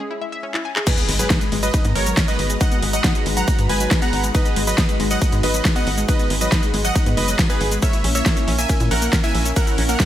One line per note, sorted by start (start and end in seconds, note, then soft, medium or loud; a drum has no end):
0.11 0.21 E4 medium
0.22 0.29 E5 medium
0.32 0.43 E5 loud
0.43 0.51 C#4 medium
0.54 0.62 E4 medium
0.54 clap medium
0.65 0.73 G#5 medium
0.76 0.84 G#4 medium
0.76 clap loud
0.87 7.79 G#3 medium
0.87 0.91 D#4 medium
0.87 7.79 D#4 medium
0.87 7.79 F#4 medium
0.87 1.14 G#4 medium
0.87 1.14 B4 loud
0.87 7.79 B4 loud
0.87 7.78 A#5 medium
0.87 kick loud
0.87 closed hi-hat medium
0.87 crash loud
0.87 ride medium
0.87 impact medium
0.87 shaker soft
0.98 1.08 B3 medium
0.98 closed hi-hat medium
0.98 shaker soft
1.08 1.27 G#1 medium
1.08 1.16 G#3 loud
1.08 open hi-hat loud
1.19 1.30 F#3 medium
1.19 1.55 G#4 medium
1.19 1.55 B4 loud
1.19 closed hi-hat medium
1.19 shaker medium
1.30 1.41 D#4 medium
1.30 kick loud
1.30 snare loud
1.30 closed hi-hat medium
1.30 ride medium
1.30 shaker soft
1.41 1.51 G#3 medium
1.41 closed hi-hat medium
1.41 shaker soft
1.52 1.70 G#1 medium
1.52 1.60 G#3 loud
1.52 open hi-hat medium
1.63 1.67 F#3 medium
1.63 1.90 B4 medium
1.63 1.90 D#5 medium
1.63 closed hi-hat medium
1.63 shaker medium
1.74 1.78 D#4 medium
1.74 kick loud
1.74 closed hi-hat medium
1.74 ride medium
1.74 shaker soft
1.85 1.94 G#2 medium
1.85 1.95 B3 medium
1.85 closed hi-hat medium
1.85 shaker soft
1.95 2.14 G#1 medium
1.95 2.06 G#3 medium
1.95 2.22 A#4 medium
1.95 2.22 C#5 loud
1.95 open hi-hat loud
2.06 2.17 F#3 medium
2.06 closed hi-hat medium
2.06 shaker medium
2.17 2.28 D#4 medium
2.17 kick loud
2.17 snare loud
2.17 closed hi-hat medium
2.17 ride medium
2.17 shaker soft
2.28 2.36 B3 loud
2.28 2.55 B4 medium
2.28 2.55 D#5 loud
2.28 closed hi-hat medium
2.28 shaker soft
2.39 2.57 G#1 loud
2.39 open hi-hat medium
2.50 2.54 G#3 medium
2.50 closed hi-hat medium
2.50 shaker medium
2.61 2.65 D#4 medium
2.61 2.88 D#5 medium
2.61 2.88 F#5 loud
2.61 kick loud
2.61 closed hi-hat medium
2.61 ride medium
2.61 shaker soft
2.72 2.82 B3 medium
2.72 closed hi-hat medium
2.72 shaker soft
2.82 3.01 G#1 medium
2.82 2.90 G#3 loud
2.82 open hi-hat loud
2.93 3.04 F#3 medium
2.93 3.29 D#5 medium
2.93 3.29 F#5 loud
2.93 closed hi-hat medium
2.93 shaker medium
3.04 3.15 D#4 medium
3.04 kick loud
3.04 snare loud
3.04 closed hi-hat medium
3.04 ride medium
3.04 shaker soft
3.15 3.25 G#3 medium
3.15 closed hi-hat medium
3.15 shaker soft
3.26 3.44 G#1 medium
3.26 3.34 G#3 loud
3.26 open hi-hat loud
3.37 3.41 F#3 medium
3.37 3.64 F#5 medium
3.37 3.64 A#5 loud
3.37 closed hi-hat medium
3.37 shaker medium
3.48 3.52 D#4 medium
3.48 kick loud
3.48 closed hi-hat medium
3.48 ride medium
3.48 shaker medium
3.59 3.68 G#2 medium
3.59 3.69 B3 medium
3.59 closed hi-hat medium
3.59 shaker soft
3.69 3.88 G#1 medium
3.69 3.80 G#3 medium
3.69 3.96 B4 medium
3.69 3.96 G#5 loud
3.69 open hi-hat loud
3.80 3.91 F#3 medium
3.80 closed hi-hat medium
3.80 shaker medium
3.91 4.01 D#4 medium
3.91 kick loud
3.91 snare loud
3.91 closed hi-hat medium
3.91 ride medium
3.91 shaker soft
4.02 4.10 B3 loud
4.02 4.29 F#5 medium
4.02 4.29 A#5 medium
4.02 closed hi-hat medium
4.02 shaker soft
4.13 4.31 G#1 loud
4.13 open hi-hat medium
4.24 4.28 G#3 medium
4.24 closed hi-hat medium
4.24 shaker medium
4.35 4.39 D#4 medium
4.35 4.62 B4 medium
4.35 4.62 D#5 loud
4.35 kick loud
4.35 closed hi-hat medium
4.35 ride medium
4.35 shaker soft
4.46 4.56 B3 medium
4.46 closed hi-hat medium
4.46 shaker soft
4.56 4.75 G#1 medium
4.56 4.64 G#3 medium
4.56 open hi-hat loud
4.67 4.78 F#3 medium
4.67 5.03 B4 medium
4.67 5.03 D#5 loud
4.67 closed hi-hat medium
4.67 shaker medium
4.78 4.88 D#4 medium
4.78 kick loud
4.78 snare loud
4.78 closed hi-hat medium
4.78 ride medium
4.78 shaker medium
4.89 4.99 G#3 medium
4.89 closed hi-hat medium
4.89 shaker soft
5.00 5.18 G#1 loud
5.00 5.07 G#3 loud
5.00 open hi-hat loud
5.11 5.15 F#3 medium
5.11 5.38 D#5 medium
5.11 5.38 F#5 loud
5.11 closed hi-hat medium
5.11 shaker medium
5.22 5.26 D#4 medium
5.22 kick loud
5.22 closed hi-hat medium
5.22 ride medium
5.22 shaker medium
5.32 5.42 G#2 medium
5.32 5.43 B3 medium
5.32 closed hi-hat medium
5.32 shaker soft
5.43 5.62 G#1 medium
5.43 5.54 G#3 medium
5.43 5.70 B4 medium
5.43 5.70 D#5 loud
5.43 open hi-hat loud
5.54 5.65 F#3 medium
5.54 closed hi-hat medium
5.54 shaker medium
5.65 5.75 D#4 medium
5.65 kick loud
5.65 snare loud
5.65 closed hi-hat medium
5.65 ride medium
5.65 shaker soft
5.76 5.83 B3 loud
5.76 6.03 D#5 medium
5.76 6.03 F#5 loud
5.76 closed hi-hat medium
5.76 shaker soft
5.87 6.05 G#1 loud
5.87 open hi-hat medium
5.98 6.02 G#3 medium
5.98 closed hi-hat medium
5.98 shaker medium
6.08 6.13 D#4 medium
6.08 6.35 B4 medium
6.08 6.35 D#5 loud
6.08 kick loud
6.08 closed hi-hat medium
6.08 ride medium
6.08 shaker medium
6.19 6.30 B3 medium
6.19 closed hi-hat medium
6.19 shaker soft
6.30 6.49 G#1 medium
6.30 6.38 G#3 loud
6.30 open hi-hat loud
6.41 6.51 F#3 medium
6.41 6.77 B4 medium
6.41 6.77 D#5 loud
6.41 closed hi-hat medium
6.41 shaker medium
6.52 6.62 D#4 medium
6.52 kick loud
6.52 snare loud
6.52 closed hi-hat medium
6.52 ride medium
6.52 shaker medium
6.63 6.72 G#3 medium
6.63 closed hi-hat medium
6.63 shaker soft
6.74 6.92 G#1 loud
6.74 6.81 G#3 loud
6.74 open hi-hat loud
6.85 6.89 F#3 medium
6.85 7.11 D#5 medium
6.85 7.11 F#5 loud
6.85 closed hi-hat medium
6.85 shaker medium
6.95 7.00 D#4 medium
6.95 kick loud
6.95 closed hi-hat medium
6.95 ride medium
6.95 shaker medium
7.06 7.15 G#2 medium
7.06 7.17 B3 medium
7.06 closed hi-hat medium
7.06 shaker soft
7.17 7.35 F#1 loud
7.17 7.27 G#3 medium
7.17 7.44 B4 medium
7.17 7.44 D#5 loud
7.17 open hi-hat loud
7.28 7.38 F#3 medium
7.28 closed hi-hat medium
7.28 shaker medium
7.39 7.49 D#4 medium
7.39 kick loud
7.39 snare loud
7.39 closed hi-hat medium
7.39 ride medium
7.39 shaker medium
7.50 7.57 B3 loud
7.50 7.77 G#4 medium
7.50 7.77 B4 medium
7.50 closed hi-hat medium
7.50 shaker soft
7.61 7.79 G#1 loud
7.61 open hi-hat medium
7.72 7.76 G#3 medium
7.72 closed hi-hat medium
7.72 shaker medium
7.82 10.05 A#3 medium
7.82 10.05 C#4 medium
7.82 10.05 E4 loud
7.82 7.87 A#4 medium
7.82 8.09 C#5 medium
7.82 8.09 E5 loud
7.82 kick loud
7.82 closed hi-hat medium
7.82 ride medium
7.82 shaker medium
7.93 8.04 E4 medium
7.93 closed hi-hat medium
7.93 shaker soft
8.04 8.22 A#1 loud
8.04 8.12 C#4 loud
8.04 open hi-hat loud
8.15 8.25 A#3 medium
8.15 8.51 C#5 medium
8.15 8.51 E5 loud
8.15 closed hi-hat medium
8.15 shaker medium
8.26 8.36 A#4 medium
8.26 kick loud
8.26 snare loud
8.26 closed hi-hat medium
8.26 ride medium
8.26 shaker medium
8.37 8.46 C#4 medium
8.37 closed hi-hat medium
8.37 shaker soft
8.48 8.66 A#1 medium
8.48 8.55 C#4 loud
8.48 open hi-hat medium
8.59 8.63 A#3 medium
8.59 8.85 E5 medium
8.59 8.85 G#5 loud
8.59 closed hi-hat medium
8.59 shaker medium
8.69 8.74 A#4 medium
8.69 kick loud
8.69 closed hi-hat medium
8.69 ride medium
8.69 shaker medium
8.80 8.89 A#2 medium
8.80 8.91 E4 medium
8.80 closed hi-hat medium
8.80 shaker soft
8.91 9.09 A#1 medium
8.91 9.01 C#4 medium
8.91 9.18 A#4 medium
8.91 9.18 F#5 loud
8.91 open hi-hat loud
9.02 9.12 A#3 medium
9.02 closed hi-hat medium
9.02 shaker medium
9.13 9.23 A#4 medium
9.13 kick loud
9.13 snare loud
9.13 closed hi-hat medium
9.13 ride medium
9.13 shaker medium
9.24 9.31 E4 loud
9.24 9.51 E5 medium
9.24 9.51 G#5 loud
9.24 closed hi-hat medium
9.24 shaker soft
9.35 9.53 A#1 loud
9.35 open hi-hat medium
9.45 9.50 C#4 medium
9.45 closed hi-hat medium
9.45 shaker medium
9.56 9.61 A#4 medium
9.56 9.83 A#4 medium
9.56 9.83 F#5 loud
9.56 kick loud
9.56 closed hi-hat medium
9.56 ride medium
9.56 shaker medium
9.67 9.78 E4 medium
9.67 closed hi-hat medium
9.67 shaker soft
9.78 9.96 A#1 medium
9.78 9.86 C#4 loud
9.78 open hi-hat loud
9.89 9.99 A#3 medium
9.89 10.05 A#4 medium
9.89 10.05 F#5 loud
9.89 closed hi-hat medium
9.89 shaker medium
10.00 10.05 A#4 medium
10.00 kick loud
10.00 snare loud
10.00 closed hi-hat medium
10.00 ride medium
10.00 shaker medium